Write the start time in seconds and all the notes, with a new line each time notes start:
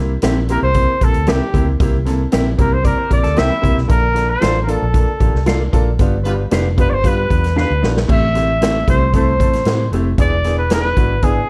Already playing: C2 C3 A#3 C4 E4 G4
0.22 A#1 A#3 C4 E4 G4 A#4 E5, snare, closed hi-hat
0.48 A#3 C4 E4 G4 A#4, closed hi-hat
0.62 C2 C5
0.74 A#3 C4 E4 G4, kick, closed hi-hat
1.01 A#1 A#3 C4 E4 G4 A4, kick, closed hi-hat
1.14 D2, closed hi-hat
1.27 C2 A#3 C4 E4 G4 A#4 E5, snare, closed hi-hat
1.53 D2 A#3 C4 E4 G4, kick, closed hi-hat
1.67 C#2
1.80 C2 C3 A#3 C4 E4 G4, kick, closed hi-hat
2.05 A#3 C4 E4 A4, snare, closed hi-hat
2.32 A#1 A#3 C4 E4 G4 A#4 E5, snare, closed hi-hat
2.58 C2 A#3 C4 E4 G4 A#4, kick, closed hi-hat
2.73 C5
2.83 A#3 C4 E4 G4 A#4 D5, kick, closed hi-hat
2.98 C5
3.09 A#1 A#3 C4 E4 G4 A#4 D5, kick, closed hi-hat
3.24 D2 A4, snare, closed hi-hat
3.35 C2 A#3 C4 E4 G4 A#4 E5, snare, closed hi-hat
3.50 E4
3.61 C2 A#3 C4 E4 G4, kick, closed hi-hat
3.77 B1, snare
3.88 A#1 A#2 A#3 D4 F4 A4 A#4, kick, closed hi-hat
4.13 A#3 D4 F4 A4, snare, closed hi-hat
4.31 C5
4.40 A1 A#3 D4 F4 A4 D5 F5, snare, closed hi-hat
4.63 A#4
4.67 A#3 D4 F4 A4, closed hi-hat
4.82 A#1
4.93 A#3 D4 F4 A4, kick, closed hi-hat
5.19 A1 A#3 D4 F4 G4, kick, closed hi-hat
5.34 C2, snare
5.46 A#3 D4 F4 A4 D5 F5, snare, closed hi-hat
5.73 A#1 A#3 D4 F4 A4, kick, closed hi-hat
5.99 G1 G2 B3 D4 F4 G4, kick, closed hi-hat
6.24 G3 B3 D4 F4 G4 B4, closed hi-hat
6.51 F1 B3 D4 F4 G4 B4 F5, snare, closed hi-hat
6.77 B3 D4 F4 G4 B4, kick, closed hi-hat
6.90 G1 C5 D5
7.04 G2 G3 B3 D4 F4 G4 B4, kick, closed hi-hat
7.30 E2 B3 D4 F4 G4, kick, closed hi-hat
7.44 snare, closed hi-hat
7.56 B3 D4 F4 G4 B4 F5, snare
7.60 B4
7.70 D2
7.82 A#1 B3 D4 F4 G4, snare
7.97 snare
8.08 A1 A2 A3 C4 E4 G4 E5, kick, crash
8.34 A3 C4 E4 G4, snare, closed hi-hat
8.61 A3 C4 E4 G4, snare, closed hi-hat
8.88 C2 A3 C4 E4 G4 C5, kick, closed hi-hat
9.13 A3 C4 E4 A4 C5, kick, closed hi-hat
9.40 A1 A3 C4 E4 A4, kick, closed hi-hat
9.53 snare, closed hi-hat
9.65 A2 A3 C4 E4 G4, snare, closed hi-hat
9.91 F1 A3 C4 E4 G4, closed hi-hat
10.18 E1 E3 B3 D4 E4 G#4 D5, kick, closed hi-hat
10.44 B3 D4 E4 G#4, snare, closed hi-hat
10.58 B4
10.70 B3 D4 E4 G#4 B4, snare, closed hi-hat
10.97 G#1 B3 D4 E4 F#4, kick, closed hi-hat
11.22 B3 D4 E4 G#4, kick, closed hi-hat